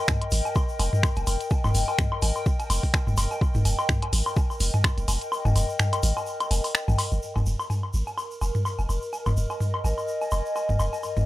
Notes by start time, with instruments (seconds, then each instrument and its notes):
Already playing: ambient pad A#4 D#5 G5
0.08 finger snap, kick, mid tom, low woodblock, shaker
0.21 closed hi-hat, high woodblock
0.31 sub bass G#1, open hi-hat, shaker
0.45 low woodblock, shaker
0.55 kick, high woodblock, shaker
0.69 shaker
0.79 sub bass F1, open hi-hat, high woodblock, low woodblock, shaker
0.93 mid tom, shaker
1.03 finger snap, kick, high woodblock, shaker
1.16 sub bass F1, closed hi-hat, low woodblock, shaker
1.27 sub bass F1, open hi-hat, high woodblock, shaker
1.40 closed hi-hat, shaker
1.50 kick, low woodblock, shaker
1.64 sub bass F1, mid tom, high woodblock, shaker
1.74 sub bass F1, open hi-hat, shaker
1.88 high woodblock, low woodblock, shaker
1.99 finger snap, kick, mid tom, shaker
2.12 high woodblock
2.22 sub bass G#1, open hi-hat, low woodblock, shaker
2.35 high woodblock, shaker
2.46 kick, shaker
2.60 closed hi-hat, low woodblock, shaker
2.70 sub bass F1, open hi-hat, high woodblock, shaker
2.83 kick, open hi-hat, shaker
2.94 finger snap, kick, high woodblock, low woodblock, shaker
3.07 sub bass F1, mid tom, shaker
3.17 sub bass F1, open hi-hat, high woodblock, shaker
3.31 low woodblock, shaker
3.41 kick, high woodblock, shaker
3.55 sub bass F1, mid tom, shaker
3.65 sub bass F1, open hi-hat, low woodblock, shaker
3.79 high woodblock, shaker
3.89 finger snap, kick, mid tom, shaker
4.02 closed hi-hat, high woodblock, low woodblock
4.13 sub bass G#1, open hi-hat, shaker
4.26 high woodblock, shaker
4.36 kick, low woodblock, shaker
4.50 high woodblock, shaker
4.60 sub bass F1, open hi-hat, shaker
4.74 mid tom, low woodblock, shaker
4.84 finger snap, kick, high woodblock, shaker
4.98 sub bass F1, closed hi-hat, shaker
5.08 sub bass F1, open hi-hat, high woodblock, low woodblock, shaker
5.21 closed hi-hat, shaker
5.32 high woodblock, shaker
5.45 sub bass F1, mid tom, low woodblock, shaker
5.56 sub bass F1, open hi-hat, high woodblock, shaker
5.69 shaker
5.79 finger snap, mid tom, low woodblock, shaker
5.93 closed hi-hat, high woodblock, shaker
6.03 sub bass G#1, open hi-hat, shaker
6.17 high woodblock, low woodblock, shaker
6.26 shaker
6.40 closed hi-hat, high woodblock, shaker
6.51 sub bass F1, open hi-hat, low woodblock, shaker
6.64 open hi-hat, high woodblock, shaker
6.75 finger snap, shaker
6.88 sub bass G#1, mid tom, low woodblock, shaker
6.98 open hi-hat, high woodblock, shaker
7.11 sub bass G1, shaker
7.22 ambient pad A#4, shaker
7.36 sub bass F1, mid tom, high woodblock, low woodblock, shaker
7.46 sub bass F1, shaker
7.60 high woodblock, shaker
7.70 mid tom, low woodblock, shaker
7.83 high woodblock
7.93 sub bass G#1, ambient pad D#5, shaker
8.07 low woodblock, shaker
8.18 high woodblock, shaker
8.31 shaker
8.41 sub bass F1, high woodblock, low woodblock, shaker
8.55 mid tom, shaker
8.65 high woodblock, shaker
8.79 sub bass F1, low woodblock, shaker
8.87 sub bass F1, ambient pad G#5, high woodblock, shaker
9.02 shaker
9.13 low woodblock, shaker
9.26 sub bass F1, mid tom, high woodblock, shaker
9.37 sub bass F1, shaker
9.50 high woodblock, low woodblock, shaker
9.60 mid tom, shaker
9.74 high woodblock
9.84 sub bass G#1, low woodblock, shaker
9.98 high woodblock, shaker
10.08 shaker
10.21 low woodblock, shaker
10.31 sub bass F1, high woodblock, shaker
10.46 shaker
10.56 high woodblock, low woodblock, shaker
10.69 sub bass F1, mid tom, shaker
10.79 sub bass F1, high woodblock, shaker
10.93 low woodblock, shaker
11.03 high woodblock, shaker
11.17 sub bass F1, mid tom, shaker